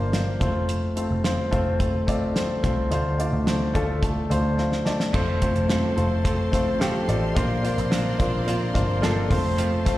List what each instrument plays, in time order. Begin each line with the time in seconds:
Already playing: picked electric bass G1, upright piano A#2 A#3 D4 F4 A#4 C5
0.12 upright piano A#3 D4 F4 C5, snare, closed hi-hat
0.40 picked electric bass F1, upright piano A3 C4 F4 C5, kick, snare, closed hi-hat
0.69 closed hi-hat
0.96 upright piano A3 C4 F4 C5, closed hi-hat
1.11 picked electric bass F1
1.23 upright piano A3 C4 F4 C5, snare, closed hi-hat
1.51 picked electric bass F1, upright piano A3 C4 F4 C5, kick, closed hi-hat
1.79 upright piano A3 C4 F4 A4, kick, closed hi-hat
2.07 upright piano A3 C4 F4 D5, kick, closed hi-hat
2.35 upright piano A3 C4 F4 C5, snare, closed hi-hat
2.62 picked electric bass C2, upright piano A3 C4 F4 C5, kick, snare, closed hi-hat
2.90 picked electric bass D2, upright piano D3 A3 D4 F4 C5, closed hi-hat
3.18 upright piano A3 D4 F4 D5, closed hi-hat
3.33 picked electric bass D2
3.46 upright piano A3 D4 F4 C5, snare, closed hi-hat
3.74 picked electric bass D2, upright piano A3 D4 F4 A4, kick, closed hi-hat
4.02 upright piano A3 D4 F4 A4, kick, closed hi-hat
4.29 picked electric bass D2, upright piano A3 D4 F4 C5, closed hi-hat
4.57 upright piano A3 D4 F4 C5, snare
4.72 snare
4.85 upright piano A3 D4 F4 D5, snare
5.00 snare
5.13 picked electric bass F1, clean electric guitar F2 C3 F3 A3 C4 A4, upright piano A3 C4 F4 C5, string section F4 C5 A5 C6, kick, crash
5.41 clean electric guitar F3 A3 C4 A4, upright piano A3 C4 F4 C5, kick, closed hi-hat
5.56 picked electric bass F1, closed hi-hat
5.68 clean electric guitar F2 C3 F3 A3 C4 A4, upright piano A3 C4 F4 C5, snare, closed hi-hat
5.96 picked electric bass F1, upright piano A3 C4 F4 C5, clean electric guitar A3 C4 A4, closed hi-hat
6.00 clean electric guitar F3
6.24 clean electric guitar F3 A3 C4, upright piano A3 C4 F4 C5, kick, closed hi-hat
6.28 clean electric guitar A4
6.52 upright piano A3 C4 F4 C5, kick, closed hi-hat
6.79 clean electric guitar F2 C3 F3 A3 C4 A4, upright piano A3 C4 F4 G4, snare, closed hi-hat
7.07 picked electric bass A1, upright piano A3 C4 F4 D5, clean electric guitar A3 C4 A4, closed hi-hat
7.11 clean electric guitar F3
7.35 picked electric bass A#1, clean electric guitar A#2 F3 C4 D4 F4, upright piano A#2 A#3 D4 F4 C5, string section D5 A#5, kick, closed hi-hat
7.63 upright piano A#3 D4 F4 C5, clean electric guitar C4 D4 F4, closed hi-hat
7.78 picked electric bass A#1, closed hi-hat
7.90 clean electric guitar A#2 F3 C4 D4 F4, upright piano A#3 D4 F4 C5, snare, closed hi-hat
8.18 picked electric bass A#1, upright piano A#3 D4 F4 C5, clean electric guitar C4 D4 F4, kick, closed hi-hat
8.46 clean electric guitar F3 C4 D4 F4, upright piano A#3 D4 F4 C5, closed hi-hat
8.74 picked electric bass G1, upright piano A#3 D4 F4 C5, kick, closed hi-hat
9.02 clean electric guitar A#2 F3 C4 D4 F4, upright piano A#3 D4 F4 A4, snare, closed hi-hat
9.29 picked electric bass F1, clean electric guitar F3 A3 C4 F4, upright piano A3 C4 F4 C5, string section C5 A5, kick, snare, open hi-hat
9.57 clean electric guitar F2 C3 F3 A3 C4 F4, closed hi-hat
9.84 clean electric guitar F3 A3 C4 F4, upright piano A3 C4 F4 C5, kick, closed hi-hat